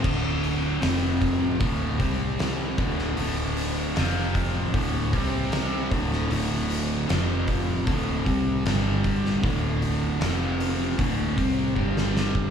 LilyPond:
<<
  \new Staff \with { instrumentName = "Overdriven electric guitar" } { \clef bass \time 4/4 \key d \minor \tempo 4 = 77 <d, a, d>4 <f, c f>4 <d, a, d>8 <c g c'>4 <d, a, d>8 | <d, a, d>4 <f, c f>4 <d, a, d>8 <c g c'>4 <d, a, d>8 | <d, a, d>4 <f, c f>4 <d, a, d>8 <c g c'>8 <g, d g>4 | <d, a, d>4 <f, c f>4 <d, a, d>8 <c g c'>8 <g, d g>4 | }
  \new Staff \with { instrumentName = "Fingered electric bass" } { \clef bass \time 4/4 \key d \minor d,,4 f,,4 d,,8 c,4 d,,8 | d,,4 f,,4 d,,8 c,4 d,,8 | d,,4 f,,4 d,,8 c,8 g,,4 | d,,4 f,,4 d,,8 c,8 g,,4 | }
  \new DrumStaff \with { instrumentName = "Drums" } \drummode { \time 4/4 <cymc bd>8 hho8 <hho sn>8 <hho bd>8 <hho bd>8 <hho bd>8 <hho sn>8 <hho bd>16 sn16 | hho8 hho8 <hho sn>8 <hho bd>8 <hho bd>8 <hho bd>8 <hho sn>8 <hho bd>16 sn16 | hho8 hho8 <hho sn>8 <hho bd>8 <hho bd>8 <hho bd>8 <hho sn>8 <hho bd>16 sn16 | <hho bd>8 hho8 <hho sn>8 hho8 <hho bd>8 <hho bd>8 bd16 sn16 sn16 bd16 | }
>>